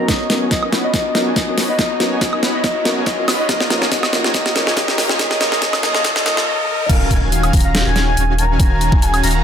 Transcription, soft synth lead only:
0.09 0.34 D#5 medium
0.51 0.70 D#5 medium
0.84 0.92 D#5 medium
0.94 1.19 D#5 loud
1.37 1.55 D#5 medium
1.69 1.77 D#5 medium
1.79 2.04 D#5 medium
2.22 2.40 D#5 medium
2.54 2.62 D#5 medium
2.64 2.89 D#5 loud
3.07 3.25 D#5 loud
3.39 3.48 D#5 medium
3.50 3.74 D#5 loud
3.92 4.17 D#5 loud
4.34 4.59 D#5 loud
4.77 5.02 D#5 loud
5.19 5.39 D#5 loud
5.40 5.60 D#5 loud
5.62 5.81 D#5 loud
5.83 6.03 D#5 loud
6.05 6.24 D#5 loud
6.25 6.45 D#5 loud
6.47 6.67 D#5 loud
6.68 6.88 D#5 loud
6.89 7.14 F5 loud
7.32 7.51 F5 loud
7.65 7.83 F5 loud
7.96 8.40 G#5 loud
8.38 8.51 A#5 medium
8.60 9.04 A#5 loud
9.02 9.21 G#5 loud
9.35 9.44 A#5 medium

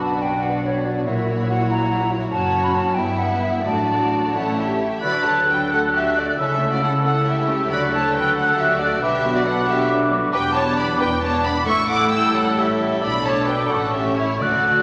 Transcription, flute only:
0.01 0.23 A5 soft
0.22 0.44 G5 soft
0.43 0.64 F#5 medium
0.65 0.87 C#5 soft
0.85 1.05 D5 soft
1.05 1.30 E5 medium
1.50 1.70 F#5 medium
1.70 2.10 A#5 medium
2.32 2.65 A5 medium
2.64 2.76 B5 medium
2.75 2.96 A5 medium
2.94 3.20 G5 medium
3.19 3.41 F#5 medium
3.42 3.48 E5 soft
3.66 4.78 A5 medium
5.02 6.33 F#6 soft
6.37 7.68 E6 soft
7.72 9.00 F#6 soft
9.02 11.63 D6 soft
11.69 12.71 E6 medium
13.02 13.73 D6 soft
13.71 14.43 C#6 soft
14.42 14.82 F#6 soft

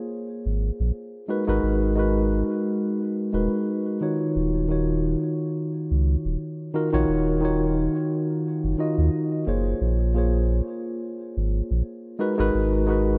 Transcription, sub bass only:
0.46 0.71 G#1 medium
0.80 0.92 A#1 loud
1.48 1.60 G#1 medium
1.63 2.43 G#1 loud
3.33 3.48 D#1 medium
4.36 5.16 D#1 loud
5.91 6.16 C#2 medium
6.25 6.37 D#1 loud
6.93 7.05 A#1 loud
7.09 7.89 D#1 loud
8.64 8.76 F#1 medium
8.98 9.10 D#2 loud
9.47 9.74 F#1 medium
9.81 10.61 A#1 loud
11.37 11.62 G#1 medium
11.71 11.82 A#1 loud
12.39 12.51 G#1 medium
12.54 13.18 G#1 loud

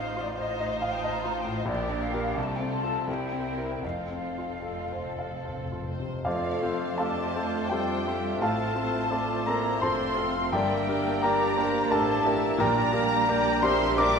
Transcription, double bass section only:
0.00 1.65 A1 medium
1.69 2.36 A#1 medium
2.37 3.07 C2 medium
3.08 3.82 C2 soft
3.83 6.04 F1 soft
6.25 8.37 F2 soft
8.41 9.79 A1 soft
9.82 10.52 F1 medium
10.52 11.92 G1 medium
11.92 12.59 A1 medium
12.60 14.19 A#1 medium

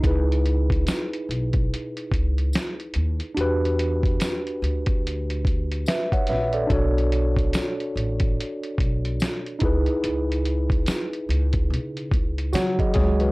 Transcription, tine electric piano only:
0.01 3.31 D#4 medium
0.01 3.32 E4 medium
0.05 3.33 G#4 medium
0.05 3.34 B4 medium
3.35 5.82 D4 medium
3.35 5.83 F#4 medium
3.39 5.84 G4 medium
3.39 5.85 B4 loud
5.88 6.12 B4 medium
5.88 6.12 E5 medium
6.13 6.28 C#5 medium
6.13 6.28 F#5 medium
6.29 6.54 B4 medium
6.29 6.53 E5 medium
6.54 6.70 A4 medium
6.54 6.94 D5 medium
6.67 9.56 D4 medium
6.67 9.57 F#4 medium
6.71 9.58 A4 medium
6.71 9.59 C#5 medium
9.59 12.48 D#4 medium
9.59 12.49 E4 medium
9.63 12.50 G#4 medium
9.63 12.51 B4 medium
12.53 12.93 F#3 medium
12.53 12.96 F#4 loud
12.53 12.78 C#5 medium
12.53 12.78 F#5 medium
12.80 12.93 G#4 medium
12.80 12.95 D#5 medium
12.94 13.32 G#3 medium
12.94 12.96 G#4 medium
12.94 13.20 G#4 medium
12.94 13.20 C#5 medium
13.21 13.32 F#4 medium
13.21 13.32 B4 medium

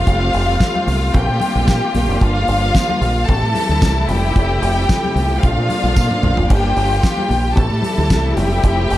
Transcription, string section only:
0.00 1.12 C3 medium
0.00 1.13 G3 medium
0.00 2.19 A3 medium
0.00 2.19 C4 medium
0.00 3.25 F4 medium
1.15 3.27 D3 medium
1.15 3.27 A#3 medium
2.22 3.28 F3 medium
2.22 4.07 G3 medium
3.28 6.47 C3 medium
3.28 4.08 E3 medium
3.28 6.47 A3 medium
3.28 5.41 E4 loud
4.09 7.53 F3 medium
4.09 5.42 G3 medium
5.43 7.55 A#3 medium
5.43 6.49 D4 medium
6.50 7.56 D3 medium
6.50 8.98 G3 medium
6.50 7.56 F4 medium
7.58 8.98 C3 medium
7.58 8.37 E3 medium
7.58 8.98 A3 medium
7.58 8.98 E4 loud
8.38 8.98 F3 medium

